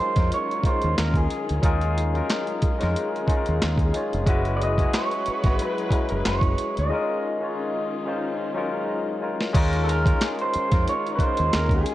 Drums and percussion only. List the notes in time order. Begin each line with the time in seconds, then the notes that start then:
0.16 kick, snare, closed hi-hat
0.32 closed hi-hat
0.51 closed hi-hat
0.63 kick, closed hi-hat
0.82 closed hi-hat
0.98 snare, clap, closed hi-hat
1.14 kick, closed hi-hat
1.30 closed hi-hat
1.49 closed hi-hat
1.63 kick, closed hi-hat
1.81 closed hi-hat
1.98 closed hi-hat
2.15 closed hi-hat
2.30 snare, clap, closed hi-hat
2.47 closed hi-hat
2.62 kick, closed hi-hat
2.80 snare, closed hi-hat
2.96 closed hi-hat
3.16 closed hi-hat
3.28 kick, closed hi-hat
3.46 closed hi-hat
3.62 snare, clap, closed hi-hat
3.78 kick, closed hi-hat
3.94 closed hi-hat
4.13 closed hi-hat
4.27 kick, closed hi-hat
4.45 closed hi-hat
4.62 closed hi-hat
4.78 kick, closed hi-hat
4.94 snare, clap, closed hi-hat
5.11 closed hi-hat
5.26 closed hi-hat
5.44 kick, snare, closed hi-hat
5.59 closed hi-hat
5.79 closed hi-hat
5.91 kick, closed hi-hat
6.09 closed hi-hat
6.25 snare, clap, closed hi-hat
6.41 kick, closed hi-hat
6.58 closed hi-hat
6.77 closed hi-hat
9.40 snare
9.54 kick, closed hi-hat, crash
9.73 closed hi-hat
9.89 closed hi-hat
10.06 kick, closed hi-hat
10.21 snare, clap, closed hi-hat
10.39 closed hi-hat
10.53 closed hi-hat
10.71 kick, snare, closed hi-hat
10.87 closed hi-hat
11.06 closed hi-hat
11.19 kick, closed hi-hat
11.37 closed hi-hat
11.53 snare, clap, closed hi-hat
11.69 kick, closed hi-hat
11.86 closed hi-hat